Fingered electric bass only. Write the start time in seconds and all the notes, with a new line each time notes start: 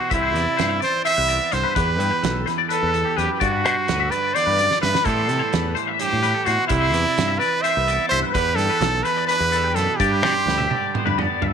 0.11 C2
0.36 E2
0.59 G2
1.18 C2
1.53 C2
1.77 E2
1.99 G2
2.23 B1
2.83 E2
3.18 E2
3.42 G2
3.65 B2
3.89 D2
4.47 G2
4.83 G2
5.06 A2
5.30 C3
5.53 E2
6.13 A2
6.47 A2
6.70 C2
6.94 E2
7.18 G2
7.77 C2
8.12 C2
8.35 E2
8.58 G2
8.80 B1
9.40 E2
9.76 F#2
10.00 G2
10.23 B2
10.46 D2
11.06 G2
11.42 G2